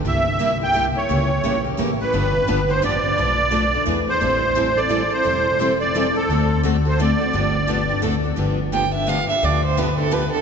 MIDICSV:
0, 0, Header, 1, 6, 480
1, 0, Start_track
1, 0, Tempo, 347021
1, 71, Time_signature, 3, 2, 24, 8
1, 14406, End_track
2, 0, Start_track
2, 0, Title_t, "Accordion"
2, 0, Program_c, 0, 21
2, 100, Note_on_c, 0, 76, 96
2, 799, Note_off_c, 0, 76, 0
2, 874, Note_on_c, 0, 79, 107
2, 1187, Note_off_c, 0, 79, 0
2, 1345, Note_on_c, 0, 73, 80
2, 2236, Note_off_c, 0, 73, 0
2, 2781, Note_on_c, 0, 71, 88
2, 3732, Note_on_c, 0, 72, 94
2, 3758, Note_off_c, 0, 71, 0
2, 3906, Note_off_c, 0, 72, 0
2, 3935, Note_on_c, 0, 74, 99
2, 5309, Note_off_c, 0, 74, 0
2, 5662, Note_on_c, 0, 72, 92
2, 6598, Note_on_c, 0, 74, 97
2, 6639, Note_off_c, 0, 72, 0
2, 7093, Note_off_c, 0, 74, 0
2, 7093, Note_on_c, 0, 72, 93
2, 7991, Note_off_c, 0, 72, 0
2, 8030, Note_on_c, 0, 74, 99
2, 8529, Note_on_c, 0, 69, 81
2, 8530, Note_off_c, 0, 74, 0
2, 9152, Note_off_c, 0, 69, 0
2, 9523, Note_on_c, 0, 72, 84
2, 9668, Note_off_c, 0, 72, 0
2, 9705, Note_on_c, 0, 74, 87
2, 11075, Note_off_c, 0, 74, 0
2, 14406, End_track
3, 0, Start_track
3, 0, Title_t, "Violin"
3, 0, Program_c, 1, 40
3, 12074, Note_on_c, 1, 79, 76
3, 12341, Note_off_c, 1, 79, 0
3, 12370, Note_on_c, 1, 76, 86
3, 12566, Note_on_c, 1, 77, 96
3, 12587, Note_off_c, 1, 76, 0
3, 12846, Note_off_c, 1, 77, 0
3, 12856, Note_on_c, 1, 76, 80
3, 13061, Note_on_c, 1, 74, 73
3, 13081, Note_off_c, 1, 76, 0
3, 13334, Note_off_c, 1, 74, 0
3, 13347, Note_on_c, 1, 72, 84
3, 13529, Note_on_c, 1, 71, 76
3, 13549, Note_off_c, 1, 72, 0
3, 13808, Note_off_c, 1, 71, 0
3, 13832, Note_on_c, 1, 69, 87
3, 14005, Note_on_c, 1, 71, 87
3, 14026, Note_off_c, 1, 69, 0
3, 14278, Note_off_c, 1, 71, 0
3, 14286, Note_on_c, 1, 69, 78
3, 14406, Note_off_c, 1, 69, 0
3, 14406, End_track
4, 0, Start_track
4, 0, Title_t, "Steel-string acoustic guitar"
4, 0, Program_c, 2, 25
4, 1514, Note_on_c, 2, 55, 57
4, 1523, Note_on_c, 2, 64, 69
4, 1793, Note_off_c, 2, 55, 0
4, 1798, Note_off_c, 2, 64, 0
4, 1989, Note_on_c, 2, 55, 80
4, 2002, Note_on_c, 2, 64, 85
4, 2139, Note_off_c, 2, 55, 0
4, 2145, Note_off_c, 2, 64, 0
4, 2465, Note_on_c, 2, 55, 88
4, 2472, Note_on_c, 2, 64, 88
4, 2617, Note_off_c, 2, 55, 0
4, 2621, Note_off_c, 2, 64, 0
4, 4415, Note_on_c, 2, 71, 65
4, 4684, Note_off_c, 2, 71, 0
4, 4865, Note_on_c, 2, 71, 93
4, 5017, Note_off_c, 2, 71, 0
4, 5351, Note_on_c, 2, 71, 84
4, 5501, Note_off_c, 2, 71, 0
4, 14406, End_track
5, 0, Start_track
5, 0, Title_t, "Steel-string acoustic guitar"
5, 0, Program_c, 3, 25
5, 66, Note_on_c, 3, 48, 61
5, 78, Note_on_c, 3, 58, 60
5, 81, Note_on_c, 3, 55, 63
5, 90, Note_on_c, 3, 64, 65
5, 95, Note_on_c, 3, 67, 63
5, 349, Note_off_c, 3, 48, 0
5, 355, Note_off_c, 3, 58, 0
5, 356, Note_off_c, 3, 55, 0
5, 361, Note_off_c, 3, 64, 0
5, 363, Note_off_c, 3, 67, 0
5, 561, Note_on_c, 3, 48, 71
5, 562, Note_on_c, 3, 55, 77
5, 568, Note_on_c, 3, 58, 76
5, 571, Note_on_c, 3, 64, 93
5, 579, Note_on_c, 3, 67, 95
5, 705, Note_off_c, 3, 48, 0
5, 705, Note_off_c, 3, 55, 0
5, 708, Note_off_c, 3, 58, 0
5, 710, Note_off_c, 3, 64, 0
5, 713, Note_off_c, 3, 67, 0
5, 832, Note_on_c, 3, 67, 49
5, 848, Note_on_c, 3, 64, 46
5, 864, Note_on_c, 3, 58, 45
5, 1021, Note_off_c, 3, 67, 0
5, 1029, Note_off_c, 3, 64, 0
5, 1030, Note_off_c, 3, 58, 0
5, 1030, Note_on_c, 3, 48, 81
5, 1045, Note_on_c, 3, 55, 85
5, 1047, Note_on_c, 3, 58, 80
5, 1052, Note_on_c, 3, 64, 83
5, 1056, Note_on_c, 3, 67, 91
5, 1179, Note_off_c, 3, 48, 0
5, 1187, Note_off_c, 3, 55, 0
5, 1188, Note_off_c, 3, 58, 0
5, 1190, Note_off_c, 3, 64, 0
5, 1192, Note_off_c, 3, 67, 0
5, 1317, Note_on_c, 3, 67, 55
5, 1338, Note_on_c, 3, 64, 45
5, 1345, Note_on_c, 3, 58, 44
5, 1504, Note_off_c, 3, 67, 0
5, 1508, Note_off_c, 3, 58, 0
5, 1514, Note_off_c, 3, 64, 0
5, 1516, Note_on_c, 3, 49, 66
5, 1520, Note_on_c, 3, 52, 58
5, 1525, Note_on_c, 3, 58, 61
5, 1526, Note_on_c, 3, 61, 67
5, 1529, Note_on_c, 3, 67, 62
5, 1794, Note_off_c, 3, 49, 0
5, 1796, Note_off_c, 3, 52, 0
5, 1799, Note_off_c, 3, 58, 0
5, 1799, Note_off_c, 3, 61, 0
5, 1801, Note_off_c, 3, 67, 0
5, 1989, Note_on_c, 3, 49, 75
5, 1993, Note_on_c, 3, 58, 85
5, 1999, Note_on_c, 3, 52, 74
5, 1999, Note_on_c, 3, 61, 81
5, 2008, Note_on_c, 3, 67, 86
5, 2139, Note_off_c, 3, 49, 0
5, 2141, Note_off_c, 3, 58, 0
5, 2144, Note_off_c, 3, 52, 0
5, 2144, Note_off_c, 3, 61, 0
5, 2149, Note_off_c, 3, 67, 0
5, 2271, Note_on_c, 3, 67, 53
5, 2289, Note_on_c, 3, 61, 50
5, 2302, Note_on_c, 3, 58, 47
5, 2461, Note_off_c, 3, 67, 0
5, 2463, Note_off_c, 3, 58, 0
5, 2465, Note_off_c, 3, 61, 0
5, 2469, Note_on_c, 3, 49, 74
5, 2478, Note_on_c, 3, 52, 81
5, 2480, Note_on_c, 3, 58, 82
5, 2481, Note_on_c, 3, 61, 88
5, 2491, Note_on_c, 3, 67, 91
5, 2619, Note_off_c, 3, 49, 0
5, 2624, Note_off_c, 3, 52, 0
5, 2624, Note_off_c, 3, 58, 0
5, 2625, Note_off_c, 3, 61, 0
5, 2630, Note_off_c, 3, 67, 0
5, 2773, Note_on_c, 3, 67, 60
5, 2791, Note_on_c, 3, 61, 53
5, 2804, Note_on_c, 3, 58, 50
5, 2942, Note_on_c, 3, 50, 64
5, 2951, Note_off_c, 3, 58, 0
5, 2952, Note_off_c, 3, 67, 0
5, 2956, Note_on_c, 3, 59, 67
5, 2957, Note_off_c, 3, 61, 0
5, 2960, Note_on_c, 3, 53, 64
5, 2962, Note_on_c, 3, 62, 69
5, 2970, Note_on_c, 3, 67, 67
5, 3228, Note_off_c, 3, 50, 0
5, 3235, Note_off_c, 3, 59, 0
5, 3237, Note_off_c, 3, 53, 0
5, 3238, Note_off_c, 3, 62, 0
5, 3241, Note_off_c, 3, 67, 0
5, 3424, Note_on_c, 3, 50, 84
5, 3425, Note_on_c, 3, 53, 77
5, 3432, Note_on_c, 3, 59, 93
5, 3438, Note_on_c, 3, 62, 83
5, 3439, Note_on_c, 3, 67, 89
5, 3577, Note_off_c, 3, 50, 0
5, 3577, Note_off_c, 3, 53, 0
5, 3581, Note_off_c, 3, 59, 0
5, 3584, Note_off_c, 3, 62, 0
5, 3584, Note_off_c, 3, 67, 0
5, 3714, Note_on_c, 3, 67, 51
5, 3734, Note_on_c, 3, 62, 51
5, 3746, Note_on_c, 3, 59, 47
5, 3897, Note_off_c, 3, 59, 0
5, 3900, Note_off_c, 3, 62, 0
5, 3900, Note_off_c, 3, 67, 0
5, 3901, Note_on_c, 3, 50, 72
5, 3905, Note_on_c, 3, 53, 83
5, 3913, Note_on_c, 3, 59, 87
5, 3916, Note_on_c, 3, 67, 93
5, 3917, Note_on_c, 3, 62, 93
5, 4055, Note_off_c, 3, 50, 0
5, 4057, Note_off_c, 3, 53, 0
5, 4061, Note_off_c, 3, 59, 0
5, 4063, Note_off_c, 3, 62, 0
5, 4063, Note_off_c, 3, 67, 0
5, 4195, Note_on_c, 3, 67, 52
5, 4222, Note_on_c, 3, 62, 46
5, 4235, Note_on_c, 3, 59, 47
5, 4384, Note_off_c, 3, 67, 0
5, 4386, Note_on_c, 3, 47, 57
5, 4393, Note_off_c, 3, 62, 0
5, 4394, Note_on_c, 3, 53, 59
5, 4401, Note_off_c, 3, 59, 0
5, 4407, Note_on_c, 3, 57, 56
5, 4408, Note_on_c, 3, 69, 63
5, 4410, Note_on_c, 3, 62, 62
5, 4670, Note_off_c, 3, 47, 0
5, 4674, Note_off_c, 3, 53, 0
5, 4680, Note_off_c, 3, 57, 0
5, 4681, Note_off_c, 3, 69, 0
5, 4682, Note_off_c, 3, 62, 0
5, 4865, Note_on_c, 3, 47, 78
5, 4875, Note_on_c, 3, 57, 84
5, 4879, Note_on_c, 3, 53, 86
5, 4892, Note_on_c, 3, 62, 79
5, 4892, Note_on_c, 3, 69, 96
5, 5017, Note_off_c, 3, 47, 0
5, 5023, Note_off_c, 3, 57, 0
5, 5024, Note_off_c, 3, 53, 0
5, 5031, Note_off_c, 3, 62, 0
5, 5031, Note_off_c, 3, 69, 0
5, 5171, Note_on_c, 3, 69, 58
5, 5196, Note_on_c, 3, 62, 53
5, 5206, Note_on_c, 3, 57, 51
5, 5351, Note_off_c, 3, 69, 0
5, 5355, Note_off_c, 3, 62, 0
5, 5366, Note_off_c, 3, 57, 0
5, 5366, Note_on_c, 3, 52, 72
5, 5371, Note_on_c, 3, 59, 83
5, 5372, Note_on_c, 3, 62, 78
5, 5384, Note_on_c, 3, 68, 83
5, 5508, Note_off_c, 3, 52, 0
5, 5511, Note_off_c, 3, 59, 0
5, 5511, Note_off_c, 3, 62, 0
5, 5517, Note_off_c, 3, 68, 0
5, 5634, Note_on_c, 3, 68, 53
5, 5661, Note_on_c, 3, 62, 47
5, 5662, Note_on_c, 3, 59, 47
5, 5823, Note_off_c, 3, 68, 0
5, 5825, Note_on_c, 3, 52, 55
5, 5830, Note_on_c, 3, 55, 58
5, 5834, Note_off_c, 3, 59, 0
5, 5834, Note_off_c, 3, 62, 0
5, 5840, Note_on_c, 3, 60, 61
5, 5840, Note_on_c, 3, 64, 65
5, 5844, Note_on_c, 3, 69, 71
5, 6110, Note_off_c, 3, 52, 0
5, 6112, Note_off_c, 3, 55, 0
5, 6117, Note_off_c, 3, 60, 0
5, 6117, Note_off_c, 3, 64, 0
5, 6119, Note_off_c, 3, 69, 0
5, 6312, Note_on_c, 3, 52, 74
5, 6321, Note_on_c, 3, 55, 73
5, 6327, Note_on_c, 3, 64, 85
5, 6329, Note_on_c, 3, 60, 81
5, 6330, Note_on_c, 3, 69, 83
5, 6461, Note_off_c, 3, 52, 0
5, 6466, Note_off_c, 3, 55, 0
5, 6469, Note_off_c, 3, 64, 0
5, 6470, Note_off_c, 3, 60, 0
5, 6470, Note_off_c, 3, 69, 0
5, 6595, Note_on_c, 3, 69, 51
5, 6615, Note_on_c, 3, 64, 56
5, 6623, Note_on_c, 3, 60, 49
5, 6771, Note_off_c, 3, 60, 0
5, 6773, Note_off_c, 3, 69, 0
5, 6774, Note_off_c, 3, 64, 0
5, 6775, Note_on_c, 3, 52, 87
5, 6784, Note_on_c, 3, 55, 79
5, 6788, Note_on_c, 3, 60, 80
5, 6790, Note_on_c, 3, 64, 75
5, 6790, Note_on_c, 3, 69, 83
5, 6932, Note_off_c, 3, 52, 0
5, 6937, Note_off_c, 3, 55, 0
5, 6939, Note_off_c, 3, 60, 0
5, 6940, Note_off_c, 3, 64, 0
5, 6940, Note_off_c, 3, 69, 0
5, 7054, Note_on_c, 3, 69, 55
5, 7062, Note_on_c, 3, 64, 52
5, 7085, Note_on_c, 3, 60, 43
5, 7243, Note_off_c, 3, 64, 0
5, 7245, Note_off_c, 3, 60, 0
5, 7250, Note_on_c, 3, 52, 57
5, 7253, Note_off_c, 3, 69, 0
5, 7254, Note_on_c, 3, 55, 67
5, 7260, Note_on_c, 3, 64, 61
5, 7262, Note_on_c, 3, 60, 56
5, 7267, Note_on_c, 3, 69, 68
5, 7542, Note_off_c, 3, 52, 0
5, 7544, Note_off_c, 3, 55, 0
5, 7547, Note_off_c, 3, 64, 0
5, 7548, Note_off_c, 3, 60, 0
5, 7551, Note_off_c, 3, 69, 0
5, 7732, Note_on_c, 3, 52, 73
5, 7739, Note_on_c, 3, 55, 86
5, 7742, Note_on_c, 3, 64, 80
5, 7744, Note_on_c, 3, 60, 83
5, 7754, Note_on_c, 3, 69, 83
5, 7891, Note_off_c, 3, 52, 0
5, 7895, Note_off_c, 3, 55, 0
5, 7896, Note_off_c, 3, 64, 0
5, 7897, Note_off_c, 3, 60, 0
5, 7902, Note_off_c, 3, 69, 0
5, 8029, Note_on_c, 3, 69, 60
5, 8043, Note_on_c, 3, 64, 49
5, 8061, Note_on_c, 3, 60, 51
5, 8221, Note_off_c, 3, 60, 0
5, 8221, Note_off_c, 3, 69, 0
5, 8222, Note_on_c, 3, 52, 86
5, 8224, Note_off_c, 3, 64, 0
5, 8233, Note_on_c, 3, 55, 77
5, 8238, Note_on_c, 3, 60, 85
5, 8241, Note_on_c, 3, 64, 90
5, 8249, Note_on_c, 3, 69, 97
5, 8377, Note_off_c, 3, 52, 0
5, 8382, Note_off_c, 3, 55, 0
5, 8384, Note_off_c, 3, 60, 0
5, 8386, Note_off_c, 3, 64, 0
5, 8390, Note_off_c, 3, 69, 0
5, 8499, Note_on_c, 3, 69, 54
5, 8522, Note_on_c, 3, 64, 47
5, 8529, Note_on_c, 3, 60, 46
5, 8696, Note_off_c, 3, 69, 0
5, 8707, Note_off_c, 3, 64, 0
5, 8711, Note_off_c, 3, 60, 0
5, 8711, Note_on_c, 3, 50, 63
5, 8712, Note_on_c, 3, 57, 65
5, 8723, Note_on_c, 3, 69, 64
5, 8727, Note_on_c, 3, 60, 58
5, 8729, Note_on_c, 3, 66, 69
5, 8993, Note_off_c, 3, 50, 0
5, 8993, Note_off_c, 3, 57, 0
5, 8999, Note_off_c, 3, 69, 0
5, 9001, Note_off_c, 3, 60, 0
5, 9002, Note_off_c, 3, 66, 0
5, 9174, Note_on_c, 3, 50, 84
5, 9190, Note_on_c, 3, 57, 82
5, 9194, Note_on_c, 3, 60, 84
5, 9195, Note_on_c, 3, 66, 99
5, 9200, Note_on_c, 3, 69, 91
5, 9333, Note_off_c, 3, 50, 0
5, 9341, Note_off_c, 3, 57, 0
5, 9343, Note_off_c, 3, 60, 0
5, 9343, Note_off_c, 3, 66, 0
5, 9346, Note_off_c, 3, 69, 0
5, 9475, Note_on_c, 3, 69, 59
5, 9494, Note_on_c, 3, 66, 54
5, 9507, Note_on_c, 3, 60, 44
5, 9664, Note_off_c, 3, 66, 0
5, 9664, Note_off_c, 3, 69, 0
5, 9670, Note_off_c, 3, 60, 0
5, 9676, Note_on_c, 3, 50, 77
5, 9681, Note_on_c, 3, 57, 83
5, 9681, Note_on_c, 3, 66, 85
5, 9687, Note_on_c, 3, 60, 85
5, 9689, Note_on_c, 3, 69, 90
5, 9823, Note_off_c, 3, 50, 0
5, 9826, Note_off_c, 3, 57, 0
5, 9826, Note_off_c, 3, 66, 0
5, 9829, Note_off_c, 3, 60, 0
5, 9830, Note_off_c, 3, 69, 0
5, 9958, Note_on_c, 3, 69, 55
5, 9975, Note_on_c, 3, 66, 48
5, 9999, Note_on_c, 3, 60, 48
5, 10146, Note_off_c, 3, 69, 0
5, 10154, Note_off_c, 3, 66, 0
5, 10159, Note_on_c, 3, 50, 65
5, 10163, Note_off_c, 3, 60, 0
5, 10163, Note_on_c, 3, 53, 68
5, 10168, Note_on_c, 3, 59, 68
5, 10171, Note_on_c, 3, 67, 67
5, 10175, Note_on_c, 3, 62, 75
5, 10437, Note_off_c, 3, 50, 0
5, 10439, Note_off_c, 3, 53, 0
5, 10442, Note_off_c, 3, 59, 0
5, 10443, Note_off_c, 3, 67, 0
5, 10445, Note_off_c, 3, 62, 0
5, 10632, Note_on_c, 3, 50, 80
5, 10646, Note_on_c, 3, 59, 79
5, 10647, Note_on_c, 3, 53, 79
5, 10659, Note_on_c, 3, 62, 86
5, 10659, Note_on_c, 3, 67, 90
5, 10782, Note_off_c, 3, 50, 0
5, 10789, Note_off_c, 3, 53, 0
5, 10789, Note_off_c, 3, 59, 0
5, 10795, Note_off_c, 3, 62, 0
5, 10796, Note_off_c, 3, 67, 0
5, 10916, Note_on_c, 3, 67, 55
5, 10938, Note_on_c, 3, 62, 55
5, 10946, Note_on_c, 3, 59, 42
5, 11093, Note_on_c, 3, 50, 87
5, 11097, Note_off_c, 3, 59, 0
5, 11097, Note_on_c, 3, 57, 83
5, 11102, Note_off_c, 3, 62, 0
5, 11103, Note_on_c, 3, 60, 74
5, 11105, Note_off_c, 3, 67, 0
5, 11108, Note_on_c, 3, 66, 81
5, 11113, Note_on_c, 3, 69, 87
5, 11252, Note_off_c, 3, 50, 0
5, 11254, Note_off_c, 3, 57, 0
5, 11257, Note_off_c, 3, 60, 0
5, 11260, Note_off_c, 3, 66, 0
5, 11262, Note_off_c, 3, 69, 0
5, 11395, Note_on_c, 3, 69, 54
5, 11408, Note_on_c, 3, 66, 47
5, 11422, Note_on_c, 3, 60, 46
5, 11579, Note_on_c, 3, 50, 60
5, 11584, Note_off_c, 3, 69, 0
5, 11585, Note_on_c, 3, 53, 66
5, 11587, Note_off_c, 3, 66, 0
5, 11588, Note_off_c, 3, 60, 0
5, 11593, Note_on_c, 3, 59, 66
5, 11593, Note_on_c, 3, 62, 65
5, 11604, Note_on_c, 3, 67, 69
5, 11868, Note_off_c, 3, 50, 0
5, 11870, Note_off_c, 3, 53, 0
5, 11874, Note_off_c, 3, 62, 0
5, 11875, Note_off_c, 3, 59, 0
5, 11880, Note_off_c, 3, 67, 0
5, 12070, Note_on_c, 3, 50, 78
5, 12076, Note_on_c, 3, 53, 76
5, 12077, Note_on_c, 3, 59, 82
5, 12081, Note_on_c, 3, 62, 82
5, 12082, Note_on_c, 3, 67, 90
5, 12221, Note_off_c, 3, 50, 0
5, 12224, Note_off_c, 3, 53, 0
5, 12224, Note_off_c, 3, 59, 0
5, 12227, Note_off_c, 3, 62, 0
5, 12227, Note_off_c, 3, 67, 0
5, 12348, Note_on_c, 3, 67, 61
5, 12366, Note_on_c, 3, 62, 57
5, 12378, Note_on_c, 3, 59, 45
5, 12532, Note_off_c, 3, 59, 0
5, 12538, Note_off_c, 3, 62, 0
5, 12538, Note_on_c, 3, 50, 80
5, 12541, Note_off_c, 3, 67, 0
5, 12546, Note_on_c, 3, 53, 82
5, 12548, Note_on_c, 3, 59, 85
5, 12555, Note_on_c, 3, 62, 98
5, 12557, Note_on_c, 3, 67, 93
5, 12695, Note_off_c, 3, 50, 0
5, 12699, Note_off_c, 3, 53, 0
5, 12700, Note_off_c, 3, 59, 0
5, 12703, Note_off_c, 3, 62, 0
5, 12704, Note_off_c, 3, 67, 0
5, 12829, Note_on_c, 3, 67, 58
5, 12842, Note_on_c, 3, 62, 51
5, 12859, Note_on_c, 3, 59, 47
5, 13021, Note_off_c, 3, 67, 0
5, 13025, Note_off_c, 3, 59, 0
5, 13028, Note_off_c, 3, 62, 0
5, 13030, Note_on_c, 3, 50, 65
5, 13034, Note_on_c, 3, 53, 60
5, 13041, Note_on_c, 3, 59, 64
5, 13045, Note_on_c, 3, 67, 61
5, 13046, Note_on_c, 3, 62, 77
5, 13313, Note_off_c, 3, 50, 0
5, 13315, Note_off_c, 3, 53, 0
5, 13318, Note_off_c, 3, 59, 0
5, 13320, Note_off_c, 3, 67, 0
5, 13321, Note_off_c, 3, 62, 0
5, 13517, Note_on_c, 3, 50, 92
5, 13518, Note_on_c, 3, 53, 82
5, 13522, Note_on_c, 3, 59, 87
5, 13532, Note_on_c, 3, 67, 94
5, 13535, Note_on_c, 3, 62, 99
5, 13665, Note_off_c, 3, 50, 0
5, 13665, Note_off_c, 3, 53, 0
5, 13667, Note_off_c, 3, 59, 0
5, 13672, Note_off_c, 3, 67, 0
5, 13673, Note_off_c, 3, 62, 0
5, 13803, Note_on_c, 3, 67, 60
5, 13818, Note_on_c, 3, 62, 59
5, 13834, Note_on_c, 3, 59, 46
5, 13971, Note_off_c, 3, 59, 0
5, 13981, Note_off_c, 3, 62, 0
5, 13983, Note_off_c, 3, 67, 0
5, 13984, Note_on_c, 3, 53, 81
5, 13986, Note_on_c, 3, 50, 83
5, 13988, Note_on_c, 3, 59, 85
5, 13997, Note_on_c, 3, 62, 77
5, 13999, Note_on_c, 3, 67, 91
5, 14138, Note_off_c, 3, 53, 0
5, 14139, Note_off_c, 3, 50, 0
5, 14140, Note_off_c, 3, 59, 0
5, 14144, Note_off_c, 3, 62, 0
5, 14146, Note_off_c, 3, 67, 0
5, 14280, Note_on_c, 3, 67, 56
5, 14293, Note_on_c, 3, 62, 55
5, 14309, Note_on_c, 3, 59, 53
5, 14406, Note_off_c, 3, 59, 0
5, 14406, Note_off_c, 3, 62, 0
5, 14406, Note_off_c, 3, 67, 0
5, 14406, End_track
6, 0, Start_track
6, 0, Title_t, "Upright bass"
6, 0, Program_c, 4, 32
6, 66, Note_on_c, 4, 36, 88
6, 1221, Note_off_c, 4, 36, 0
6, 1510, Note_on_c, 4, 37, 87
6, 1895, Note_off_c, 4, 37, 0
6, 1998, Note_on_c, 4, 34, 69
6, 2404, Note_off_c, 4, 34, 0
6, 2473, Note_on_c, 4, 33, 79
6, 2881, Note_off_c, 4, 33, 0
6, 2956, Note_on_c, 4, 31, 90
6, 3338, Note_off_c, 4, 31, 0
6, 3436, Note_on_c, 4, 31, 77
6, 3843, Note_off_c, 4, 31, 0
6, 3919, Note_on_c, 4, 33, 72
6, 4325, Note_off_c, 4, 33, 0
6, 4403, Note_on_c, 4, 35, 80
6, 5167, Note_off_c, 4, 35, 0
6, 5348, Note_on_c, 4, 40, 87
6, 5734, Note_off_c, 4, 40, 0
6, 5832, Note_on_c, 4, 33, 85
6, 6985, Note_off_c, 4, 33, 0
6, 7263, Note_on_c, 4, 28, 75
6, 8420, Note_off_c, 4, 28, 0
6, 8697, Note_on_c, 4, 38, 93
6, 9857, Note_off_c, 4, 38, 0
6, 10137, Note_on_c, 4, 31, 85
6, 10912, Note_off_c, 4, 31, 0
6, 11100, Note_on_c, 4, 38, 81
6, 11490, Note_off_c, 4, 38, 0
6, 11586, Note_on_c, 4, 31, 90
6, 12742, Note_off_c, 4, 31, 0
6, 13039, Note_on_c, 4, 38, 88
6, 14189, Note_off_c, 4, 38, 0
6, 14406, End_track
0, 0, End_of_file